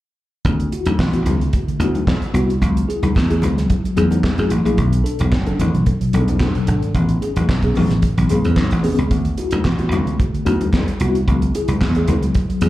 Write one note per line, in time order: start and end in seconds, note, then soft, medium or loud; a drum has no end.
0.45 0.68 D2 medium
0.45 0.59 D3 medium
0.45 0.59 A3 soft
0.45 kick loud
0.45 closed hi-hat medium
0.45 muted conga soft
0.45 low conga medium
0.60 closed hi-hat soft
0.72 0.86 E4 medium
0.72 0.86 F#4 medium
0.72 closed hi-hat medium
0.86 0.97 D2 medium
0.86 closed hi-hat soft
0.86 high conga medium
0.99 1.22 A1 medium
0.99 kick loud
0.99 snare loud
0.99 clap medium
1.13 1.25 B3 medium
1.13 1.26 E4 medium
1.13 1.26 F#4 medium
1.13 closed hi-hat soft
1.26 1.49 C#2 medium
1.26 closed hi-hat medium
1.26 high conga medium
1.26 low conga medium
1.41 1.53 D3 soft
1.41 1.53 A3 soft
1.41 closed hi-hat soft
1.53 1.60 E4 soft
1.53 1.60 F#4 soft
1.53 kick loud
1.53 closed hi-hat medium
1.53 muted conga soft
1.68 1.80 D3 medium
1.68 1.80 A3 medium
1.68 closed hi-hat soft
1.80 2.03 D2 medium
1.80 1.94 B3 medium
1.80 1.94 E4 medium
1.80 1.94 F#4 medium
1.80 closed hi-hat medium
1.80 high conga medium
1.95 closed hi-hat soft
1.95 high conga medium
2.07 kick loud
2.07 snare loud
2.07 clap medium
2.07 high conga medium
2.22 closed hi-hat soft
2.33 2.57 C2 medium
2.33 2.48 B3 medium
2.33 2.48 E4 medium
2.33 2.49 F#4 medium
2.33 closed hi-hat medium
2.50 closed hi-hat soft
2.61 2.85 C#2 loud
2.61 2.75 F#3 medium
2.61 kick medium
2.61 closed hi-hat medium
2.61 low conga medium
2.77 closed hi-hat soft
2.88 3.02 E4 medium
2.88 3.03 G#4 medium
2.88 closed hi-hat medium
3.03 3.14 C#2 medium
3.03 closed hi-hat soft
3.03 high conga medium
3.15 3.39 E2 medium
3.15 kick loud
3.15 snare loud
3.15 clap medium
3.15 muted conga soft
3.30 3.42 A3 medium
3.30 3.43 E4 medium
3.30 3.42 G#4 medium
3.30 closed hi-hat soft
3.42 3.66 C#2 medium
3.42 closed hi-hat medium
3.42 muted conga soft
3.42 high conga medium
3.42 low conga medium
3.57 3.70 F#3 medium
3.57 snare soft
3.57 closed hi-hat soft
3.70 3.76 E4 soft
3.70 3.76 G#4 soft
3.70 kick loud
3.70 closed hi-hat medium
3.70 muted conga soft
3.84 3.97 F#3 soft
3.84 closed hi-hat soft
3.96 4.20 E2 medium
3.96 4.11 A3 medium
3.96 4.11 E4 medium
3.96 4.11 G#4 medium
3.96 closed hi-hat medium
3.96 high conga medium
4.11 closed hi-hat soft
4.11 high conga medium
4.24 kick medium
4.24 snare loud
4.24 clap medium
4.24 muted conga soft
4.24 high conga medium
4.38 4.49 F#2 medium
4.38 4.51 A3 medium
4.38 4.51 E4 medium
4.38 4.51 G#4 medium
4.38 closed hi-hat soft
4.50 4.63 A1 medium
4.50 4.65 F#3 soft
4.50 closed hi-hat medium
4.50 muted conga soft
4.65 4.78 A#1 medium
4.65 4.78 A3 medium
4.65 4.78 E4 medium
4.65 4.78 G#4 medium
4.65 closed hi-hat soft
4.77 5.01 B1 loud
4.77 4.92 B2 medium
4.77 4.92 F#3 medium
4.77 kick loud
4.77 closed hi-hat medium
4.77 low conga medium
4.93 closed hi-hat soft
5.04 5.18 D4 medium
5.04 5.19 A4 medium
5.04 closed hi-hat medium
5.19 5.31 B1 medium
5.19 closed hi-hat medium
5.19 high conga medium
5.32 kick loud
5.32 snare loud
5.32 clap medium
5.32 muted conga soft
5.46 5.59 C#4 medium
5.46 5.59 D4 medium
5.46 5.59 A4 medium
5.46 closed hi-hat soft
5.59 5.83 A1 loud
5.59 closed hi-hat medium
5.59 high conga medium
5.59 low conga medium
5.73 5.86 B2 medium
5.73 5.86 F#3 medium
5.73 closed hi-hat soft
5.86 5.92 D4 soft
5.86 5.93 A4 soft
5.86 kick medium
5.86 closed hi-hat medium
6.01 6.14 B2 soft
6.01 6.13 F#3 medium
6.01 closed hi-hat soft
6.13 6.37 B1 medium
6.13 6.28 C#4 medium
6.13 6.28 D4 medium
6.13 6.28 A4 medium
6.13 closed hi-hat medium
6.13 high conga medium
6.28 closed hi-hat soft
6.28 high conga medium
6.40 6.55 D4 medium
6.40 6.55 A4 medium
6.40 kick loud
6.40 snare loud
6.40 clap medium
6.40 high conga medium
6.55 6.68 B2 medium
6.55 6.68 F#3 medium
6.55 closed hi-hat soft
6.67 6.91 G#1 medium
6.67 6.81 D4 medium
6.67 6.82 A4 medium
6.67 closed hi-hat medium
6.67 muted conga soft
6.82 closed hi-hat soft
6.95 7.17 A1 loud
6.95 7.09 A2 medium
6.95 7.09 E3 medium
6.95 kick loud
6.95 closed hi-hat medium
6.95 low conga medium
7.09 closed hi-hat soft
7.21 7.35 C#4 medium
7.21 7.36 G#4 medium
7.21 closed hi-hat medium
7.21 muted conga soft
7.36 7.47 A1 medium
7.36 closed hi-hat soft
7.36 high conga medium
7.49 7.72 B1 medium
7.49 kick loud
7.49 snare loud
7.49 clap medium
7.49 muted conga soft
7.62 7.76 B3 medium
7.62 7.76 C#4 medium
7.62 7.76 G#4 medium
7.62 kick medium
7.62 closed hi-hat soft
7.75 7.99 A1 medium
7.75 open hi-hat medium
7.75 muted conga soft
7.75 high conga medium
7.75 low conga medium
7.90 8.03 A2 medium
7.90 8.03 E3 medium
7.90 snare soft
7.90 closed hi-hat soft
8.02 8.09 C#4 soft
8.02 8.08 G#4 soft
8.02 kick loud
8.02 closed hi-hat medium
8.02 muted conga soft
8.17 8.28 B1 medium
8.17 8.30 A2 soft
8.17 8.30 E3 soft
8.17 closed hi-hat soft
8.29 8.42 C#2 medium
8.29 8.44 B3 medium
8.29 8.44 C#4 medium
8.29 8.44 G#4 medium
8.29 closed hi-hat medium
8.29 high conga medium
8.45 8.55 E2 medium
8.45 closed hi-hat soft
8.45 high conga medium
8.57 8.69 A2 medium
8.57 kick loud
8.57 snare medium
8.57 clap medium
8.57 muted conga soft
8.57 high conga medium
8.71 8.82 A1 medium
8.71 closed hi-hat soft
8.83 8.97 B3 medium
8.83 8.97 C#4 medium
8.83 8.98 G#4 medium
8.83 open hi-hat medium
8.83 muted conga soft
8.83 low conga medium
8.98 9.11 C#2 medium
8.98 closed hi-hat soft
9.11 9.34 D2 medium
9.11 9.25 D3 medium
9.11 9.25 A3 medium
9.11 kick loud
9.11 closed hi-hat medium
9.11 muted conga soft
9.11 low conga medium
9.25 closed hi-hat soft
9.38 9.52 E4 medium
9.38 9.52 F#4 medium
9.38 closed hi-hat medium
9.38 muted conga soft
9.51 9.63 D2 medium
9.51 closed hi-hat medium
9.51 high conga medium
9.65 9.88 A1 medium
9.65 kick loud
9.65 snare loud
9.65 clap medium
9.65 muted conga soft
9.79 9.92 B3 medium
9.79 9.91 E4 medium
9.79 9.92 F#4 medium
9.79 closed hi-hat soft
9.92 10.15 C#2 medium
9.92 closed hi-hat medium
9.92 high conga medium
9.92 low conga medium
10.06 10.19 D3 medium
10.06 10.19 A3 medium
10.06 closed hi-hat soft
10.19 10.25 E4 soft
10.19 10.25 F#4 soft
10.19 kick loud
10.19 closed hi-hat medium
10.19 muted conga soft
10.33 10.46 D3 medium
10.33 10.45 A3 medium
10.33 closed hi-hat soft
10.46 10.69 D2 medium
10.46 10.60 B3 medium
10.46 10.60 E4 medium
10.46 10.60 F#4 medium
10.46 closed hi-hat medium
10.46 high conga medium
10.61 closed hi-hat soft
10.61 high conga medium
10.73 kick medium
10.73 snare loud
10.73 clap medium
10.73 muted conga soft
10.73 high conga medium
10.88 closed hi-hat soft
11.00 11.23 C2 medium
11.00 11.14 B3 medium
11.00 11.14 E4 medium
11.00 11.15 F#4 medium
11.00 closed hi-hat medium
11.15 closed hi-hat soft
11.28 11.50 C#2 loud
11.28 11.42 F#3 medium
11.28 kick medium
11.28 closed hi-hat medium
11.28 muted conga soft
11.28 low conga medium
11.42 closed hi-hat soft
11.55 11.69 E4 medium
11.55 11.69 G#4 medium
11.55 closed hi-hat medium
11.55 muted conga soft
11.68 11.79 C#2 medium
11.68 closed hi-hat soft
11.68 high conga medium
11.81 12.04 E2 medium
11.81 kick loud
11.81 snare loud
11.81 clap medium
11.95 12.08 A3 medium
11.95 12.08 E4 medium
11.95 12.08 G#4 medium
11.95 closed hi-hat soft
12.08 12.31 C#2 medium
12.08 closed hi-hat medium
12.08 muted conga soft
12.08 high conga medium
12.08 low conga medium
12.22 12.35 F#3 soft
12.22 closed hi-hat soft
12.35 12.41 E4 soft
12.35 12.41 G#4 soft
12.35 kick loud
12.35 closed hi-hat medium
12.49 12.62 F#3 medium
12.49 closed hi-hat soft
12.61 12.69 E2 medium
12.61 12.69 A3 medium
12.61 12.69 E4 medium
12.61 12.69 G#4 medium
12.61 closed hi-hat medium
12.61 high conga medium